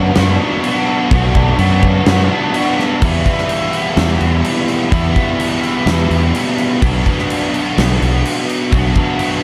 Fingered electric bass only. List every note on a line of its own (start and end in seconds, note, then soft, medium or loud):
0.00 0.11 F#2 medium
0.17 0.38 F#2 loud
1.11 1.53 B1 medium
1.58 2.00 F#2 medium
2.07 2.27 F#2 loud
3.02 3.23 E2 medium
3.97 4.18 E2 loud
4.21 4.41 E2 medium
4.92 5.13 E2 loud
5.86 6.07 E2 medium
6.10 6.31 E2 medium
6.82 7.03 B1 loud
7.78 7.98 B1 loud
8.02 8.22 B1 medium
8.73 8.93 B1 loud